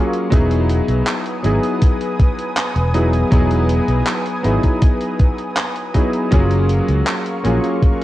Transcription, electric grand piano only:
Already playing: F#3 A#3 C#4 F4 G#4
0.30 F#3 B3 D#4 E4 G#4
1.43 F#3 B3 D#4 E4 G#4
2.94 F#3 B3 D#4 E4 G#4
3.31 F#3 B3 D#4 E4 G#4
4.43 F#3 B3 D#4 E4 G#4
5.94 F#3 B3 D#4 E4 G#4
6.31 F#3 A#3 C#4 F4 G#4
7.44 F#3 A#3 C#4 F4 G#4

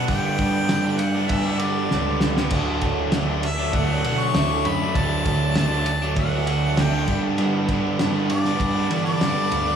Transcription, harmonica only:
0.07 G5
0.98 F#5
1.28 E5
1.59 D5
3.45 E5
3.75 F#5
4.20 C#6
4.66 B5
4.97 A5
5.58 A5
6.19 F#5
6.80 G5
8.31 D5
9.05 D5

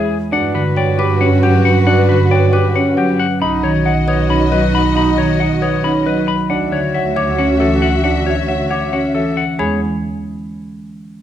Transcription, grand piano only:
0.32 D4
0.77 C#5
0.99 G4
1.21 C#4
1.87 D4
2.31 C#5
2.53 G4
2.75 C#4
3.42 D#4
3.86 D#5
4.08 B4
4.30 C#4
4.96 D#4
5.40 D#5
5.62 B4
5.84 C#4
6.50 D4
6.94 C#5
7.16 F#4
7.38 C#4
8.04 D4
8.49 C#5
8.70 F#4
8.93 C#4
9.59 G#4

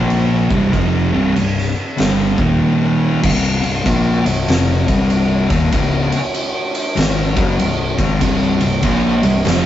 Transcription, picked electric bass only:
Already playing: A#1
0.50 C1
0.73 F1
1.14 C1
1.36 C1
2.00 G1
2.38 D#1
3.23 C1
3.64 C1
3.86 A#1
4.26 C1
4.48 F1
4.88 C1
5.50 D#1
5.73 C#1
6.97 G#1
7.37 F#1
7.60 C1
7.98 G#1
8.21 C1
8.61 C1
8.83 A#1
9.23 C1
9.46 F1

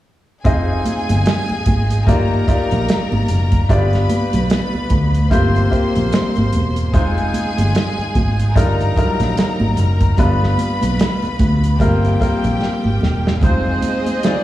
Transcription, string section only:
0.44 G#4 G#5
2.06 A#4 A#5
3.69 B4 B5
5.31 C5 C6
6.93 G#4 G#5
8.56 A#4 A#5
10.18 B4 B5
11.80 G4 G5
13.42 C4 G#4 D#5

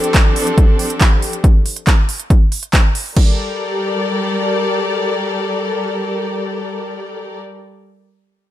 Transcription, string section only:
Already playing: F3 C4 D4 G4 A4
3.17 G3 G4 A4 A#4 D5

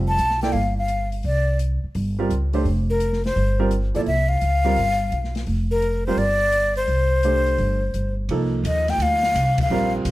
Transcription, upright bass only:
Already playing: F1
0.18 B1
0.53 G1
1.24 C2
1.84 muted upright bass stroke
1.95 G1
2.30 C#2
2.65 F1
3.36 G1
3.95 A#1
4.06 C2
4.42 C#2
4.77 G1
5.12 B1
5.47 F1
6.17 G1
6.88 C2
7.59 G1
7.94 G1
8.29 C2
8.64 D#2
8.98 D2
9.34 C2
9.70 A#1
10.05 A1

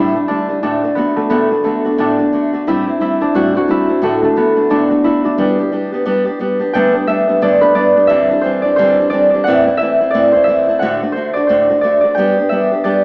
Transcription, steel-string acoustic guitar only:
Already playing: D2 A2 D3 G3 A3 D4
0.15 D3 G3 A3 D4
0.28 D3 G3 A3 D4
0.48 D3 G3 A3 D4
0.63 D2 A2 D3 A3 D4 F#4
0.83 D3 A3 D4 F#4
0.97 D3 A3 D4 F#4
1.16 D3 A3 D4 F#4
1.30 D2 A2 D3 A3 D4 F#4
1.51 D3 A3 D4 F#4
1.64 D3 A3 D4 F#4
1.85 D3 A3 D4 F#4
1.97 D2 A2 D3 A3 D4 F#4
2.18 D3 A3 D4 F#4
2.32 D3 A3 D4 F#4
2.53 D3 A3 D4 F#4
2.67 A2 G3 A3 C4 E4
2.87 A3 C4 E4
3.00 G3 A3 C4 E4
3.21 A3 C4 E4
3.35 A2 G3 A3 C4 E4
3.55 A3 C4 E4
3.68 G3 A3 C4 E4
3.88 A3 C4 E4
4.02 D2 A2 D3 A3 D4 F#4
4.22 D3 A3 D4 F#4
4.36 D3 A3 D4 F#4
4.55 D3 A3 D4 F#4
4.70 D2 A2 D3 A3 D4 F#4
4.90 D3 A3 D4 F#4
5.04 D3 A3 D4 F#4
5.24 D3 A3 D4 F#4
5.38 G3 B3 D4 G4
5.58 B3 D4 G4
5.72 G3 B3 D4 G4
5.92 B3 D4 G4
6.05 G3 B3 D4 G4
6.25 B3 D4 G4
6.39 G3 B3 D4 G4
6.60 B3 D4 G4
6.74 G2 D3 G3 A3 B3 D4
6.94 G3 A3 B3 D4
7.07 G3 A3 B3 D4
7.27 G3 A3 B3 D4
7.41 G2 D3 G3 A3 B3 D4
7.61 G3 A3 B3 D4
7.74 G3 A3 B3 D4
7.96 G3 A3 B3 D4
8.09 G2 D3 E3 G3 C4 D4
8.30 E3 G3 C4 D4
8.44 E3 G3 C4 D4
8.64 E3 G3 C4 D4
8.78 G2 D3 E3 G3 C4 D4
8.99 E3 G3 C4 D4
9.12 E3 G3 C4 D4
9.34 E3 G3 C4 D4
9.47 A2 E3 A3 C4 E4
9.67 A3 C4 E4
9.80 E3 A3 C4 E4
10.00 A3 C4 E4
10.14 A2 E3 A3 C4 E4
10.34 A3 C4 E4
10.47 E3 A3 C4 E4
10.68 A3 C4 E4
10.81 D2 A2 D3 A3 D4 F#4
11.02 D3 A3 D4 F#4
11.16 D3 A3 D4 F#4
11.36 D3 A3 D4 F#4
11.49 D2 A2 D3 A3 D4 F#4
11.69 D3 A3 D4 F#4
11.83 D3 A3 D4 F#4
12.03 D3 A3 D4 F#4
12.18 G3 B3 D4 G4
12.37 B3 D4 G4
12.51 G3 B3 D4 G4
12.72 B3 D4 G4
12.84 G3 B3 D4 G4

